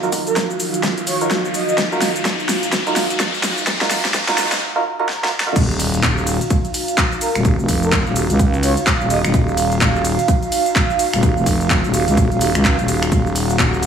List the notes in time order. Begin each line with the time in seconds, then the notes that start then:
Already playing: D#3 F#3 D#4 F4 F#4 F5, riser
0.03 D#4 F4 F#4 A#4, shaker
0.12 kick, open hi-hat, shaker
0.27 A#4, closed hi-hat, shaker
0.36 kick, snare, closed hi-hat, shaker
0.50 shaker
0.60 open hi-hat, shaker
0.74 closed hi-hat, shaker
0.83 kick, snare, closed hi-hat, shaker
0.98 closed hi-hat, shaker
1.07 C#5, open hi-hat, shaker
1.21 D#4 F4 F#4 A#4 C#5, closed hi-hat, shaker
1.31 kick, snare, closed hi-hat, shaker
1.45 shaker
1.54 D#5, open hi-hat, shaker
1.69 D#5, shaker
1.78 kick, snare, closed hi-hat, shaker
1.92 D#4 F4 F#4 A#4, shaker
2.01 snare, open hi-hat, shaker
2.16 closed hi-hat, shaker
2.25 kick, snare, closed hi-hat, shaker
2.40 shaker
2.49 snare, open hi-hat, shaker
2.63 closed hi-hat, shaker
2.72 kick, snare, closed hi-hat, shaker
2.87 D#4 F4 F#4 A#4, closed hi-hat, shaker
2.96 snare, open hi-hat, shaker
3.10 closed hi-hat, shaker
3.20 kick, snare, closed hi-hat, shaker
3.34 shaker
3.43 snare, open hi-hat, shaker
3.58 shaker
3.67 kick, snare, closed hi-hat, shaker
3.81 D#4 F4 F#4 A#4, snare, shaker
3.91 kick, snare, open hi-hat, shaker
4.05 snare, shaker
4.14 kick, snare, closed hi-hat, shaker
4.28 D#4 F4 F#4 A#4, snare, shaker
4.38 snare, open hi-hat, shaker
4.52 snare, closed hi-hat, shaker
4.76 D#4 F4 F#4 A#4
4.99 D#4 F4 F#4 A#4
5.09 snare
5.23 D#4 F4 F#4 A#4, snare
5.40 snare
5.47 D#4 F4 F#4 A#4
5.56 D#1 D#4, kick, closed hi-hat, crash, ride, impact, shaker
5.70 F5, shaker
5.76 F#4, open hi-hat, ride
5.80 shaker
5.94 closed hi-hat, shaker
6.03 D#1, kick, clap, closed hi-hat, shaker
6.18 shaker
6.27 open hi-hat, ride, shaker
6.41 closed hi-hat, shaker
6.50 kick, closed hi-hat, ride, shaker
6.65 closed hi-hat, shaker
6.74 open hi-hat, ride, shaker
6.88 closed hi-hat, shaker
6.98 kick, clap, closed hi-hat, ride, shaker
7.12 shaker
7.21 A#4, open hi-hat, ride, shaker
7.35 D#1, finger snap, shaker
7.45 kick, closed hi-hat, ride, shaker
7.59 F1, shaker
7.69 kick, open hi-hat, ride, shaker
7.83 A#4, closed hi-hat, shaker
7.92 kick, clap, closed hi-hat, ride, shaker
8.06 D#1, shaker
8.16 open hi-hat, ride, shaker
8.30 C#2, closed hi-hat, shaker
8.39 C#2, kick, closed hi-hat, ride, shaker
8.54 closed hi-hat, shaker
8.63 C#5, open hi-hat, ride, shaker
8.77 C#5, closed hi-hat, shaker
8.87 kick, clap, closed hi-hat, shaker
9.01 D#1, shaker
9.10 D#5, open hi-hat, ride, shaker
9.25 D#1 D#5, finger snap, shaker
9.34 D#1, kick, closed hi-hat, ride, shaker
9.48 shaker
9.57 open hi-hat, ride, shaker
9.72 closed hi-hat, shaker
9.81 D#1, kick, clap, closed hi-hat, ride, shaker
9.95 shaker
10.05 open hi-hat, ride, shaker
10.19 closed hi-hat, shaker
10.28 kick, closed hi-hat, ride, shaker
10.43 closed hi-hat, shaker
10.52 open hi-hat, ride, shaker
10.66 closed hi-hat, shaker
10.76 kick, clap, closed hi-hat, ride, shaker
10.90 shaker
10.99 open hi-hat, ride, shaker
11.13 D#1, finger snap, shaker
11.23 kick, closed hi-hat, ride, shaker
11.37 F1, shaker
11.46 kick, open hi-hat, ride, shaker
11.61 closed hi-hat, shaker
11.70 kick, clap, closed hi-hat, ride, shaker
11.84 D#1, closed hi-hat, shaker
11.94 open hi-hat, ride, shaker
12.08 C#2, closed hi-hat, shaker
12.17 D#1, kick, closed hi-hat, ride, shaker
12.32 D#1, closed hi-hat, shaker
12.41 open hi-hat, ride, shaker
12.55 C#2, finger snap, closed hi-hat, shaker
12.65 kick, clap, closed hi-hat, ride, shaker
12.79 D#1, closed hi-hat, shaker
12.88 open hi-hat, ride, shaker
13.03 finger snap, shaker
13.12 D#1, kick, closed hi-hat, ride, shaker
13.26 F#5, shaker
13.36 open hi-hat, ride, shaker
13.50 closed hi-hat, shaker
13.59 D#1, kick, clap, closed hi-hat, ride, shaker
13.74 shaker
13.83 open hi-hat, ride, shaker